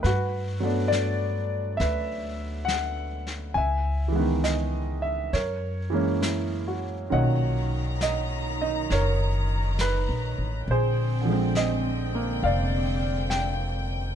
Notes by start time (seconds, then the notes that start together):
0.03 G2 F#4 B4, brush sweep, snare
0.60 F#3 A3 B3
0.65 D4
0.88 D5
0.92 snare, hi-hat pedal
1.77 D2 B4 E5, brush sweep, snare
2.65 F#5, snare, hi-hat pedal
3.27 snare
3.54 C#2 E5 G#5, brush sweep
4.08 E3 G#3
4.16 D#3 B3
4.44 D#5, snare, hi-hat pedal
5.02 E5
5.33 F#2 A#4 C#5, brush sweep, snare
5.90 E3 G#3 A#3
5.95 C#4
6.22 E4, snare, hi-hat pedal
6.68 F#4
7.10 B1 A#2 D#3 F#3 C#4 D#5 F#5 A#5, brush sweep
8.01 D#5, snare, hi-hat pedal
8.62 D#4 D#5
8.90 F#1 A#4 C#5, brush sweep, snare
9.79 B4, snare, hi-hat pedal
10.09 A#1
10.38 A1
10.68 A#1 D3 C4 G#4 C5 G5, brush sweep
11.21 D3 F3
11.29 G#3
11.33 C4
11.55 D#5, snare, hi-hat pedal
12.15 A#3
12.43 F1 D5 F5, brush sweep
13.30 G5, snare, hi-hat pedal